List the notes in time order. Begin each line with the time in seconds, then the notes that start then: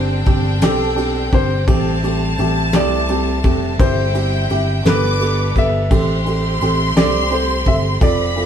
Already playing: G1 G3 C4 D4 G4 C5 G5
0.26 G1 C4 D4 G4, kick, ride
0.61 B1 C4 D4 G4 A4, snare, ride
0.96 C4 D4 G4, ride
1.32 G1 C4 D4 G4 C5, kick, ride
1.67 A1 A3 C4 G4 A5, kick, ride
2.03 A3 C4 G4, ride
2.38 A1 A3 C4 G4, ride
2.73 C2 A3 C4 G4 D5, snare, ride
3.08 A3 C4 G4, ride
3.44 F1 A3 C4 G4, kick, ride
3.79 G1 C4 E4 G4 C5 G5, kick, ride
4.15 C4 E4 G4, ride
4.50 G1 C4 E4 G4, ride
4.85 G1 B3 D4 G4 A4 B4 D6, snare, ride
5.20 B3 G4 A4, ride
5.56 G1 B3 G4 A4 E5, kick, ride
5.91 A1 A3 C4 G4 A4 C6, kick, ride
6.26 C4 G4 A4, ride
6.61 A1 C4 G4 A4, ride
6.96 C2 C4 G4 A4 D5, snare, ride
7.31 C4 G4 A4 C5, ride
7.66 G1 C4 G4 A4 E5, kick, ride
8.00 F1 A3 C4 F4 A4 D5 B5, kick, ride
8.36 C4 F4 A4, ride